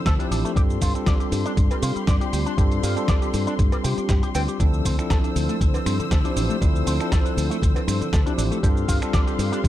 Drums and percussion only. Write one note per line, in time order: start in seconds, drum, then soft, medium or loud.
0.06 kick loud
0.06 snare loud
0.06 closed hi-hat medium
0.06 shaker soft
0.20 closed hi-hat medium
0.20 shaker soft
0.32 open hi-hat loud
0.32 shaker medium
0.45 closed hi-hat soft
0.45 shaker soft
0.56 kick loud
0.56 closed hi-hat medium
0.56 shaker soft
0.70 shaker soft
0.82 kick medium
0.82 open hi-hat loud
0.82 shaker medium
0.95 closed hi-hat soft
0.95 shaker soft
1.06 kick loud
1.06 snare loud
1.06 closed hi-hat medium
1.06 shaker soft
1.20 closed hi-hat soft
1.20 shaker soft
1.32 open hi-hat loud
1.32 shaker medium
1.46 closed hi-hat medium
1.46 shaker soft
1.57 kick loud
1.57 closed hi-hat medium
1.57 shaker soft
1.71 closed hi-hat soft
1.71 cowbell medium
1.71 shaker soft
1.83 open hi-hat loud
1.83 shaker medium
1.96 closed hi-hat soft
1.96 shaker soft
2.07 kick loud
2.07 snare loud
2.07 closed hi-hat medium
2.07 shaker soft
2.21 closed hi-hat soft
2.21 shaker soft
2.33 open hi-hat loud
2.33 shaker medium
2.46 closed hi-hat soft
2.46 shaker soft
2.58 kick loud
2.58 closed hi-hat medium
2.58 shaker soft
2.72 closed hi-hat soft
2.72 shaker soft
2.83 open hi-hat loud
2.83 shaker medium
2.97 closed hi-hat soft
2.97 shaker soft
3.08 kick loud
3.08 snare loud
3.08 closed hi-hat medium
3.08 shaker soft
3.22 closed hi-hat soft
3.22 shaker soft
3.34 open hi-hat loud
3.34 shaker medium
3.47 closed hi-hat soft
3.47 shaker soft
3.59 kick loud
3.59 closed hi-hat medium
3.59 shaker soft
3.72 closed hi-hat soft
3.72 cowbell medium
3.72 shaker soft
3.84 open hi-hat loud
3.84 shaker medium
3.98 closed hi-hat soft
3.98 shaker soft
4.09 kick loud
4.09 snare loud
4.09 closed hi-hat medium
4.09 shaker soft
4.23 closed hi-hat medium
4.23 shaker soft
4.35 open hi-hat loud
4.35 cowbell medium
4.35 shaker medium
4.48 closed hi-hat soft
4.48 shaker soft
4.60 kick loud
4.60 closed hi-hat medium
4.60 shaker soft
4.74 shaker soft
4.85 kick medium
4.85 open hi-hat loud
4.85 shaker medium
4.99 finger snap medium
4.99 closed hi-hat soft
4.99 shaker soft
5.10 kick loud
5.10 snare loud
5.10 closed hi-hat medium
5.10 shaker soft
5.24 closed hi-hat soft
5.24 shaker soft
5.36 open hi-hat loud
5.36 shaker medium
5.49 closed hi-hat soft
5.49 shaker soft
5.61 kick loud
5.61 closed hi-hat medium
5.61 shaker soft
5.74 closed hi-hat soft
5.74 cowbell medium
5.74 shaker soft
5.86 finger snap medium
5.86 open hi-hat loud
5.86 shaker medium
6.00 closed hi-hat soft
6.00 shaker soft
6.11 kick loud
6.11 snare loud
6.11 closed hi-hat medium
6.11 shaker soft
6.25 closed hi-hat soft
6.25 shaker soft
6.37 open hi-hat loud
6.37 shaker medium
6.50 closed hi-hat soft
6.50 shaker soft
6.62 kick loud
6.62 closed hi-hat medium
6.62 shaker soft
6.76 shaker soft
6.87 open hi-hat loud
6.87 shaker medium
7.00 finger snap medium
7.00 closed hi-hat soft
7.00 shaker soft
7.12 kick loud
7.12 snare loud
7.12 closed hi-hat medium
7.12 shaker soft
7.26 closed hi-hat soft
7.26 shaker soft
7.38 open hi-hat loud
7.38 shaker medium
7.51 closed hi-hat medium
7.51 shaker soft
7.62 kick loud
7.62 closed hi-hat medium
7.62 shaker soft
7.76 closed hi-hat soft
7.76 cowbell medium
7.76 shaker soft
7.88 finger snap medium
7.88 open hi-hat loud
7.88 shaker medium
8.02 closed hi-hat soft
8.02 shaker soft
8.13 kick loud
8.13 snare loud
8.13 closed hi-hat medium
8.13 shaker soft
8.27 closed hi-hat medium
8.27 shaker soft
8.39 open hi-hat loud
8.39 shaker medium
8.52 closed hi-hat soft
8.52 shaker soft
8.63 kick loud
8.63 closed hi-hat medium
8.63 shaker soft
8.77 shaker soft
8.88 kick medium
8.88 open hi-hat loud
8.88 shaker medium
9.02 finger snap medium
9.02 closed hi-hat soft
9.02 shaker soft
9.13 kick loud
9.13 snare loud
9.13 closed hi-hat medium
9.13 shaker soft
9.28 closed hi-hat soft
9.28 shaker soft
9.39 open hi-hat loud
9.39 shaker medium
9.53 closed hi-hat medium
9.53 shaker soft
9.64 kick loud
9.64 closed hi-hat medium
9.64 shaker soft